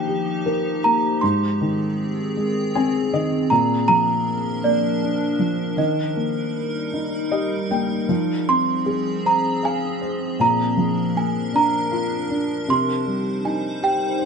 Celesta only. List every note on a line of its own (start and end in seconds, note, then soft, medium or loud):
0.00 0.87 G5 medium
0.84 1.24 A#5 medium
1.21 2.32 C6 medium
3.50 3.87 A#5 medium
3.88 4.67 A#5 loud
4.64 5.82 D5 medium
5.78 7.28 D#5 medium
8.49 9.28 C6 medium
9.26 9.65 A#5 medium
9.65 10.37 G#5 medium
10.41 11.19 A#5 medium
11.17 11.56 G#5 medium
11.56 12.73 A#5 medium
12.70 13.47 C6 medium
13.45 13.84 G#5 medium
13.84 14.25 G5 medium